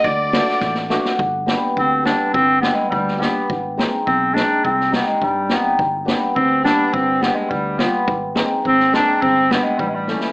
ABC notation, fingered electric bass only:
X:1
M:2/4
L:1/8
Q:1/4=105
K:none
V:1 name="Fingered electric bass" clef=bass
D,,2 A,,,2 | G,,,2 D,,2 | G,,,2 D,,2 | _A,,,2 B,,,2 |
C,,2 G,,2 | G,,,2 D,,2 | G,,,2 D,,2 | _A,,,2 A,,,2 |
G,,,2 A,,,2 |]